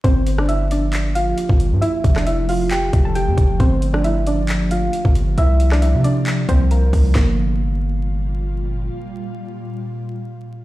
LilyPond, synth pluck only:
\new Staff \with { instrumentName = "Synth pluck" } { \time 4/4 \key g \dorian \tempo 4 = 135 <c' c''>8. <d' d''>16 <e' e''>8 <d' d''>4 <f' f''>4. | <e' e''>8. <d' d''>16 <e' e''>8 <f' f''>8 <g' g''>8. <a' a''>16 <g' g''>8 r8 | <c' c''>8. <d' d''>16 <e' e''>8 <d' d''>4 <f' f''>4. | <e' e''>8. <d' d''>16 <e' e''>8 <d' d''>4 <c' c''>8 <bes bes'>4 |
bes2. r4 | r1 | }